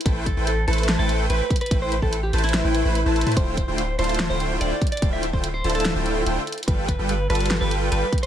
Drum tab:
HH |x---x---x---xxxxx---x---x---xxxx|x---x---x---xxxxx---x---x---xxxx|x---x---x---xxxxx---x---x---xxxx|x---x---x---xxxxx---x---x---xxxx|
SD |----------------o---------------|----------------o---------------|----------------o---------------|----------------o---------------|
BD |o---o-----------------------o---|o-----o-------------------------|o---o-----------------------o---|o-----o-------------------------|

HH |x---x---x---xxxxx---x---x---xxx-|
SD |----------------o---------------|
BD |o---o-----------------------o---|